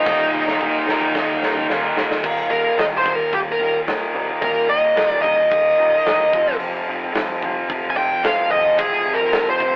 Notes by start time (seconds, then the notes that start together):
Already playing: A#3 D#4 D#5
0.06 D#1 D#2 A#2 D#3 G3 A#3 D#4, kick, snare
0.32 D#1, high tom
0.46 D#3 G3 A#3 D#4, snare
0.60 D#1 D#2 A#2 D#3, kick
0.74 muted clean electric guitar stroke
0.86 D#1 D#2 A#2 D#3 G3 A#3 D#4, snare
1.01 kick
1.14 D#1 D#2 A#2 D#3, kick, snare
1.41 D#1 D#3 G3 A#3 D#4, snare
1.55 muted clean electric guitar stroke, mid tom
1.69 D#1 D#2 A#2 D#3, snare
1.82 D#3 G3 A#3 D#4
1.96 D#1 D#2 A#2 D#3, snare
2.10 muted clean electric guitar stroke, snare
2.23 D#1 D#2 A#2 D#3 G3 A#3 D#4, kick, crash
2.50 D#1 D#2 A#2 D#3 A#4
2.64 D#3 G3 A#3 D#4
2.77 D#1 D#2 A#2 D#3 G3 A#3 D#4 D#5, snare, open hi-hat
2.97 C5
3.05 D#1 D#2 A#2 D#3 G3 A#3 D#4, kick
3.15 A#4
3.19 muted clean electric guitar stroke
3.33 D#1 D#2 A#2 D#3 G4, kick, open hi-hat
3.52 A#4
3.59 D#1 D#2 A#2 D#3 G3 A#3 D#4
3.74 muted clean electric guitar stroke
3.87 D#1 D#2 A#2 D#3 G3 A#3 D#4, snare, open hi-hat
4.14 C2 D#2 A#2 D#3 G3 A#3 D#4
4.29 D#3 G3 A#3 D#4
4.42 D#1 D#2 A#2 D#3 G3 A#3 D#4 A#4, kick, open hi-hat
4.69 D#2 A#2 D#3 D#5
4.83 D#3 G3 A#3 D#4
4.96 D#1 D#2 A#2 D#3 G3 A#3 D#4, snare, open hi-hat
5.22 D#1 D#2 A#2 D#3 G3 A#3 D#4 D#5, kick
5.38 muted clean electric guitar stroke
5.51 D#1 D#2 A#2 D#3, kick, open hi-hat
5.78 D#1 D#2 A#2 D#3 G3 A#3 D#4
5.92 muted clean electric guitar stroke
6.05 E1 D#2 A#2 D#3 G3 A#3 D#4, snare, open hi-hat
6.33 F1 F2 C3 F3 G#3 C4 F4, kick
6.47 F3 G#3 C4 F4, snare
6.60 F1 F2 C3 F3 G#3 C4 F4, open hi-hat
6.87 F1 F2 C3 F3
7.01 F3 G#3 C4 F4
7.14 F1 F2 C3 F3 G#3 C4 F4, snare, open hi-hat
7.42 F1 F2 C3 F3 G#3 C4 F4, kick
7.56 muted clean electric guitar stroke
7.69 F1 F2 C3 F3, kick, open hi-hat
7.90 G#5
7.96 F1 F2 C3 F3 G#3 C4 F4 G5
8.11 muted clean electric guitar stroke
8.23 F1 F2 C3 F3 G#3 C4 F4 F5, snare, open hi-hat
8.50 D#1 F2 C3 F3 G#3 C4 F4 D#5
8.64 F3 G#3 C4 F4
8.78 F1 F2 C3 F3 G#3 C4 F4 G#4, kick, open hi-hat
9.06 F2 C3 F3
9.13 A#4
9.19 F3 G#3 C4 F4
9.32 F1 F2 C3 F3 G#3 C4 F4, snare, open hi-hat
9.50 C5
9.60 F1 F2 C3 F3 G#3 C4 F4, kick